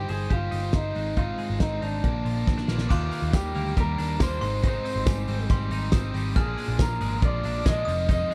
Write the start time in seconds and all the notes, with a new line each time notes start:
Already playing: G3 D#4 G4 C5
0.00 D#4 G4
0.08 G1 G#4 C5, open hi-hat
0.29 G1 A#3 D#4 F4 G4 C5, kick, closed hi-hat
0.51 G1 D#4, open hi-hat
0.62 D#4 G4 C5
0.73 G1 D#4 C5, kick, snare, closed hi-hat
0.95 G#1 G#2 D#3 G#3 C4 D#4, open hi-hat
1.16 G#2 D#3 G#3 C4 D#4 F4, kick, closed hi-hat
1.38 G#3, open hi-hat
1.50 G#1 G#2 D#3 G#3 C4 D#4
1.60 G#1 C4 D#4, kick, snare, closed hi-hat
1.72 G#3 C4 D#4
1.82 G#1 D4 D#4, open hi-hat
2.03 A#1 A#2 D3 F3 A#3 D4, kick, closed hi-hat
2.25 A#1 F3, open hi-hat
2.36 F3 A#3 D4
2.47 A#1 C4, kick, snare
2.58 D4, snare
2.68 A#1 A#2 D3 F3 A#3 D4, snare
2.78 snare
2.89 D#2 D#3 G3 A#3 D4 F4 D6, kick, crash, tambourine
3.00 G3 A#3 D4
3.11 A#3, open hi-hat, tambourine
3.22 D#2
3.33 D#2 G3 G4, kick, snare, hi-hat pedal, ride, tambourine
3.55 D2 D#3 G3 A#3 D4, open hi-hat
3.77 D#2 G3 A#4, kick, hi-hat pedal, ride, tambourine
3.98 D#2 D#3 G3 A#3 D4, open hi-hat, tambourine
4.20 D#2 D#3 G3 A#3 D4 C5, kick, snare, hi-hat pedal, ride, tambourine
4.41 G#1 G#2 D#3 G3 C4 D#4 C6, open hi-hat, tambourine
4.63 G#2 D#3 G3 C4 D#4 C5, kick, hi-hat pedal, ride, tambourine
4.74 G3 C4 D#4
4.85 C4, open hi-hat, tambourine
4.96 G#1
5.06 G#1 G3 G#5, kick, snare, hi-hat pedal, ride, tambourine
5.28 G#1 D#3 G3 C4 D#4, open hi-hat
5.49 G#1 G3 C6, kick, hi-hat pedal, ride, tambourine
5.70 G#1 D#3 G3 C4 D#4, open hi-hat, tambourine
5.92 G#1 D#3 G3 C4 D#4 D#6, kick, snare, hi-hat pedal, ride, tambourine
6.14 G#1 D#3 G3 C4 D#4, open hi-hat, tambourine
6.35 A#1 A#2 F3 G#3 D4 G#4 F6, kick, hi-hat pedal, ride, tambourine
6.46 F3 G#3 D4
6.57 G#3, open hi-hat, tambourine
6.68 A#1
6.79 A#1 F3 A#4, kick, snare, hi-hat pedal, ride, tambourine
7.00 G#1 A#2 F3 G#3 D4, open hi-hat, tambourine
7.22 A#1 F3 D5, kick, hi-hat pedal, ride
7.43 A#1 A#2 F3 G#3 D4, open hi-hat, tambourine
7.65 A#1 A#2 F3 G#3 D4 D#5, kick, snare, hi-hat pedal, ride, tambourine
7.85 F1 F2 C3 D#3 G#3 D#4 D#6, open hi-hat, tambourine
8.08 F2 C3 D#3 G#3 D#4 D#5, kick, hi-hat pedal, ride, tambourine
8.18 D#3 G#3 D#4
8.30 G#3, open hi-hat